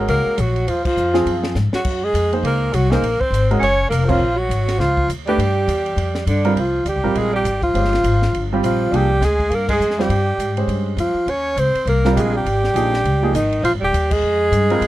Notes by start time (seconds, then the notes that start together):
Already playing: G#3 C#4 F#4 A#4
0.08 C#2 A#3 A#4, ride
0.26 muted upright bass stroke
0.38 A#1 F#3 F#4, hi-hat pedal, ride
0.56 ride
0.68 D#2 F3 F4, ride
0.84 F3 F4, kick, crash
0.97 F2, hi-hat pedal
1.14 F3 C4 F4 G#4, snare, ride
1.26 F#2, ride
1.44 snare
1.55 G#2, snare, hi-hat pedal
1.73 F#3 F#4, muted upright bass stroke, snare
1.85 F#2, kick, crash
2.04 G#3 G#4
2.14 F2, hi-hat pedal, ride
2.33 A#3 D#4 G#4 C5, ride
2.43 C#2 A#3 A#4, ride
2.73 C2 F#3 F#4, hi-hat pedal, ride
2.90 A#3 D#4 G#4 A#4 C5, snare
3.02 A#1, ride
3.20 C4 C5, muted upright bass stroke, kick
3.30 G#1, hi-hat pedal, ride
3.51 G#3 C#4 F#4 A#4, ride
3.59 F#1 C#4, ride
3.63 C#5
3.89 F1 A#3 A#4, hi-hat pedal, ride
4.05 F3
4.09 C4 F4 A#4 C#5, kick, crash
4.20 A#1
4.36 F#3 F#4
4.49 G#1, hi-hat pedal, ride
4.68 snare, ride
4.78 C#2 F3 F4, snare
4.97 kick
5.08 D#2, hi-hat pedal, ride
5.26 G3 A3 D4 G4 B4, ride
5.38 G2, ride
5.67 E2, hi-hat pedal, ride
5.86 ride
5.96 F2, ride
6.15 snare
6.26 G2 D3 D4, hi-hat pedal, ride
6.45 G3 C4 F4 A#4, ride
6.55 C2 F3, ride
6.59 F4
6.85 D2 G3 G4, hi-hat pedal, ride
6.95 C2
7.04 A#1 G3 C4 F4 A#4
7.15 A#1 G#3 G#4, ride
7.33 G3 G4
7.44 G#1, hi-hat pedal, ride
7.62 F3 F4, kick, ride
7.74 G1 G#3 C#4 G4 C5, ride
7.85 snare
7.93 snare, ride
8.04 G#1, hi-hat pedal, ride
8.22 snare
8.33 G1, ride
8.53 G3 C4 F4 G4
8.63 A#1 F3 F4, hi-hat pedal, ride
8.92 C2 F3 G3 A#3 D4 G4 G#4, ride
9.21 D2 G#3, snare, hi-hat pedal, ride
9.25 G#4
9.40 kick, ride
9.50 G2 A#3, ride
9.55 A#4
9.69 G#3 G#4, kick, crash
9.80 F2, hi-hat pedal
9.91 snare
9.99 G3 C4 F4 G4 C5, snare
10.09 G2, ride
10.38 G#2, hi-hat pedal, ride
10.57 G#3 C#4 G4 C5, ride
10.67 G2, ride
10.97 F2 F3 F4, hi-hat pedal, ride
11.14 muted upright bass stroke
11.26 D#2 C#4, ride
11.30 C#5
11.56 C#2 C4 C5, hi-hat pedal, ride
11.75 muted upright bass stroke, ride
11.85 C2 A#3 A#4, ride
12.05 G3 C4 F4 A#4, snare
12.12 A#1 G3 G4
12.16 G#3 G#4, hi-hat pedal, ride
12.34 G3 G4
12.45 G#1, ride
12.64 snare
12.74 A#1 F3 A#3 D#4 G#4, hi-hat pedal, ride
12.94 snare
13.04 C#2, ride
13.22 F3 A#3 D#4 G#4
13.33 G#1 D#3 D#4, hi-hat pedal, ride
13.52 ride
13.63 A#1 F3 F4, ride
13.72 G#1
13.80 D#1 G3
13.84 G4
13.93 D#2, hi-hat pedal, ride
14.10 G#3 G#4, kick, crash
14.22 F2
14.52 G2, hi-hat pedal, ride
14.70 G3 C4 F4 A#4, ride
14.81 G#2, ride